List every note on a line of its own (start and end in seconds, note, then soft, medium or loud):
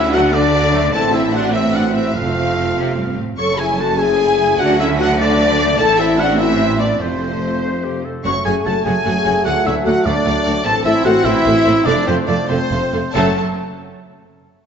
0.00 0.91 D2 medium
0.00 0.91 D3 medium
0.00 0.13 C#4 loud
0.00 0.13 E4 loud
0.00 0.13 E5 loud
0.00 0.16 E5 loud
0.12 0.21 F#3 medium
0.12 0.21 A3 medium
0.12 0.33 D4 loud
0.12 0.33 F#4 loud
0.12 0.33 F#5 loud
0.12 0.21 F#5 loud
0.12 0.33 F#5 loud
0.12 0.35 F#5 loud
0.33 0.93 A3 loud
0.33 0.93 D4 loud
0.33 0.92 D5 loud
0.33 0.94 D5 loud
0.73 0.80 F#3 medium
0.73 0.80 A3 loud
0.93 2.15 A1 medium
0.93 2.15 A2 loud
0.93 1.50 E3 medium
0.93 1.50 C4 medium
0.93 1.02 E4 loud
0.93 1.14 A4 loud
0.93 1.01 A5 loud
0.93 1.13 A5 loud
0.93 1.14 A5 loud
1.13 1.33 C4 medium
1.13 1.33 E4 loud
1.13 1.33 E5 medium
1.13 1.34 E5 medium
1.13 1.23 E5 medium
1.13 1.34 E5 medium
1.33 1.54 D4 loud
1.33 1.53 F#4 loud
1.33 1.41 F#5 medium
1.33 1.39 F#5 medium
1.33 1.54 F#5 loud
1.33 1.44 F#5 loud
1.53 2.14 E3 medium
1.53 1.74 C4 medium
1.53 2.14 C4 medium
1.53 1.62 E4 medium
1.53 1.62 E5 medium
1.53 1.74 E5 loud
1.53 1.74 E5 medium
1.53 1.77 E5 loud
1.73 1.83 D4 medium
1.73 1.94 F#4 medium
1.73 1.94 F#5 medium
1.73 1.81 F#5 medium
1.73 1.95 F#5 medium
1.95 2.14 C4 medium
1.95 2.15 E4 medium
1.95 2.15 E5 medium
2.15 3.18 F1 medium
2.15 2.73 F2 medium
2.15 3.17 F3 medium
2.15 3.17 A3 medium
2.15 3.16 C4 medium
2.15 3.16 F4 medium
2.15 3.16 F5 medium
2.15 3.18 F5 medium
2.77 2.96 C3 medium
2.97 3.17 G2 medium
3.18 3.38 A2 medium
3.37 4.55 F#1 medium
3.37 4.55 F#2 medium
3.37 5.75 F#3 medium
3.37 5.75 A3 medium
3.37 3.57 A4 medium
3.37 3.57 C#5 medium
3.37 3.57 C#6 medium
3.37 3.44 C#6 medium
3.37 3.58 C#6 loud
3.37 3.48 C#6 medium
3.57 3.79 E4 medium
3.57 3.78 G#4 medium
3.57 3.68 G#5 medium
3.57 3.79 G#5 medium
3.76 4.00 F#4 medium
3.76 3.98 A4 medium
3.76 3.99 A5 medium
3.76 4.00 A5 medium
3.98 4.60 E4 medium
3.98 4.58 G#4 loud
3.98 4.59 G#5 medium
3.98 4.59 G#5 loud
3.98 4.58 G#5 loud
4.59 5.79 D2 medium
4.59 5.79 D3 medium
4.59 4.79 D4 loud
4.59 4.79 F#4 loud
4.59 4.79 F#5 loud
4.59 4.68 F#5 loud
4.79 4.99 C#4 loud
4.79 4.89 E4 loud
4.79 4.99 E5 loud
4.79 4.99 E5 medium
4.79 4.87 E5 medium
4.79 4.89 E5 medium
4.99 5.19 D4 loud
4.99 5.09 F#4 loud
4.99 5.18 F#5 loud
4.99 5.19 F#5 loud
4.99 5.09 F#5 loud
5.18 5.78 A3 loud
5.18 5.78 D4 loud
5.18 5.77 D5 loud
5.18 5.79 D5 loud
5.18 5.78 D5 loud
5.78 7.01 A1 loud
5.78 7.01 A2 medium
5.78 6.97 E3 loud
5.78 6.97 C4 loud
5.78 5.99 E4 loud
5.78 5.99 A4 loud
5.78 5.98 A5 loud
5.78 5.99 A5 loud
5.98 6.19 C4 loud
5.98 6.19 E4 loud
5.98 6.19 E5 loud
5.98 6.18 E5 medium
5.98 6.19 E5 loud
5.98 6.21 E5 loud
6.18 6.39 D4 loud
6.18 6.40 F#4 loud
6.18 6.39 F#5 medium
6.18 6.39 F#5 loud
6.18 6.28 F#5 loud
6.38 6.80 C4 loud
6.38 6.81 E4 loud
6.38 6.79 E5 loud
6.38 6.79 E5 medium
6.38 6.79 E5 loud
6.38 6.80 E5 loud
6.79 7.01 B3 medium
6.79 7.01 D4 loud
6.79 7.03 D5 medium
6.79 7.00 D5 medium
6.79 7.01 D5 medium
7.00 8.03 F1 medium
7.00 8.03 F2 medium
7.00 8.01 F3 medium
7.00 8.03 A3 medium
7.00 8.01 A3 medium
7.00 8.03 C4 medium
7.00 8.02 C5 medium
7.00 8.05 C5 medium
7.62 7.86 C5 medium
7.84 8.06 G4 medium
8.05 8.25 A4 medium
8.24 8.34 F#1 medium
8.24 8.32 F#2 medium
8.24 10.62 F#3 medium
8.24 8.33 A3 medium
8.24 10.62 A3 medium
8.24 8.33 F#4 medium
8.24 8.33 C#5 medium
8.24 8.35 C#5 loud
8.24 8.33 F#5 medium
8.24 8.44 C#6 loud
8.24 8.44 C#6 medium
8.24 8.32 C#6 loud
8.45 8.54 F#1 medium
8.45 8.53 F#2 medium
8.45 8.53 A3 medium
8.45 8.53 F#4 medium
8.45 8.65 G#4 loud
8.45 8.54 C#5 medium
8.45 8.54 F#5 medium
8.45 8.54 G#5 medium
8.45 8.65 G#5 medium
8.45 8.53 G#5 medium
8.64 8.74 F#1 medium
8.64 8.73 F#2 medium
8.64 8.73 A3 medium
8.64 8.73 F#4 medium
8.64 8.85 A4 medium
8.64 8.74 C#5 medium
8.64 8.74 F#5 medium
8.64 8.75 A5 medium
8.64 8.86 A5 medium
8.83 8.94 F#1 medium
8.83 8.93 F#2 medium
8.83 8.94 A3 medium
8.83 8.94 F#4 medium
8.83 9.45 G#4 loud
8.83 8.93 C#5 medium
8.83 8.94 F#5 medium
8.83 9.46 G#5 loud
8.83 9.44 G#5 loud
8.83 9.45 G#5 loud
9.05 9.14 F#1 medium
9.05 9.13 F#2 medium
9.05 9.14 A3 medium
9.05 9.14 F#4 medium
9.05 9.13 C#5 medium
9.05 9.14 F#5 medium
9.25 9.34 F#1 medium
9.25 9.33 F#2 medium
9.25 9.33 A3 medium
9.25 9.33 F#4 medium
9.25 9.33 C#5 medium
9.25 9.33 F#5 medium
9.45 9.54 D2 medium
9.45 9.53 A3 medium
9.45 9.65 F#4 loud
9.45 9.53 A4 medium
9.45 9.54 D5 medium
9.45 9.65 F#5 loud
9.45 9.53 F#5 medium
9.45 9.66 F#5 loud
9.45 9.66 F#5 medium
9.65 9.74 D2 medium
9.65 9.73 A3 medium
9.65 9.74 E4 loud
9.65 9.73 A4 medium
9.65 9.74 D5 medium
9.65 9.86 E5 medium
9.65 9.75 E5 loud
9.65 9.74 E5 medium
9.65 9.74 F#5 medium
9.83 9.93 D2 medium
9.83 9.94 D2 medium
9.83 9.94 A3 medium
9.83 10.04 F#4 loud
9.83 9.94 A4 medium
9.83 9.94 D5 medium
9.83 10.06 F#5 loud
9.83 9.94 F#5 medium
9.83 10.07 F#5 loud
9.83 10.06 F#5 medium
10.06 10.14 D2 loud
10.06 10.14 D2 medium
10.06 10.14 A3 medium
10.06 10.66 D4 loud
10.06 10.14 A4 medium
10.06 10.65 D5 loud
10.06 10.64 D5 loud
10.06 10.64 D5 medium
10.06 10.14 D5 medium
10.06 10.14 F#5 medium
10.26 10.34 D2 medium
10.26 10.34 A3 medium
10.26 10.34 A4 medium
10.26 10.34 D5 medium
10.26 10.34 F#5 medium
10.45 10.53 D2 medium
10.45 10.54 D2 medium
10.45 10.54 A3 medium
10.45 10.54 A4 medium
10.45 10.53 D5 medium
10.45 10.53 F#5 medium
10.64 10.73 A1 medium
10.64 10.73 A2 medium
10.64 11.87 E3 loud
10.64 10.73 A3 medium
10.64 11.85 C4 loud
10.64 10.74 A4 medium
10.64 10.85 A4 loud
10.64 10.72 C5 medium
10.64 10.73 E5 medium
10.64 10.85 A5 loud
10.64 10.71 A5 loud
10.64 10.75 A5 loud
10.84 10.93 A1 medium
10.84 10.94 A2 medium
10.84 10.93 A3 medium
10.84 11.05 E4 loud
10.84 10.93 A4 medium
10.84 10.92 C5 medium
10.84 10.92 E5 medium
10.84 11.04 E5 loud
10.84 10.91 E5 medium
10.84 11.05 E5 loud
11.04 11.13 A1 medium
11.04 11.14 A2 loud
11.04 11.13 A3 medium
11.04 11.25 F#4 loud
11.04 11.13 A4 medium
11.04 11.12 C5 medium
11.04 11.12 E5 medium
11.04 11.26 F#5 loud
11.04 11.12 F#5 loud
11.24 11.33 A1 loud
11.24 11.33 A2 loud
11.24 11.33 A3 medium
11.24 11.86 E4 loud
11.24 11.34 A4 medium
11.24 11.33 C5 medium
11.24 11.32 E5 medium
11.24 11.85 E5 loud
11.24 11.87 E5 loud
11.44 11.54 A1 loud
11.44 11.53 A2 medium
11.44 11.54 A3 medium
11.44 11.54 A4 medium
11.44 11.52 C5 medium
11.44 11.52 E5 medium
11.65 11.74 A1 medium
11.65 11.74 A2 medium
11.65 11.75 A3 medium
11.65 11.75 A4 medium
11.65 11.73 C5 medium
11.65 11.73 E5 medium
11.85 11.94 F1 loud
11.85 11.95 F2 loud
11.85 12.91 F3 medium
11.85 12.93 A3 medium
11.85 11.95 A3 medium
11.85 12.07 D4 loud
11.85 11.95 A4 medium
11.85 11.93 C5 loud
11.85 12.07 D5 loud
11.85 11.93 D5 loud
11.85 11.93 F5 medium
12.06 12.16 F1 loud
12.06 12.15 F2 loud
12.06 12.16 A3 medium
12.06 12.16 C4 loud
12.06 12.16 A4 medium
12.06 12.14 C5 medium
12.06 12.28 C5 medium
12.06 12.15 C5 loud
12.06 12.17 C5 loud
12.06 12.15 F5 medium
12.26 12.36 F1 medium
12.26 12.36 F2 medium
12.26 12.37 A3 medium
12.26 12.48 D4 loud
12.26 12.37 A4 medium
12.26 12.36 C5 medium
12.26 12.33 D5 loud
12.26 12.49 D5 loud
12.26 12.49 D5 medium
12.26 12.36 F5 medium
12.49 12.57 F1 medium
12.49 12.57 F2 medium
12.49 12.58 A3 medium
12.49 13.13 C4 loud
12.49 12.58 A4 medium
12.49 13.13 C5 medium
12.49 12.57 C5 medium
12.49 13.13 C5 medium
12.49 13.14 C5 loud
12.49 12.57 F5 medium
12.71 12.79 F1 medium
12.71 12.79 F2 medium
12.71 12.79 A3 medium
12.71 12.79 A4 medium
12.71 12.79 C5 medium
12.71 12.79 F5 medium
12.92 13.00 F1 medium
12.92 13.01 F2 medium
12.92 13.01 A3 medium
12.92 13.01 A4 medium
12.92 13.01 C5 medium
12.92 13.02 F5 medium
13.14 13.39 F#1 loud
13.14 13.39 F#2 medium
13.14 13.33 F#3 loud
13.14 13.32 A3 loud
13.14 13.33 A3 loud
13.14 13.39 C#4 medium
13.14 13.32 A4 loud
13.14 13.39 A4 medium
13.14 13.39 C#5 loud
13.14 13.39 A5 medium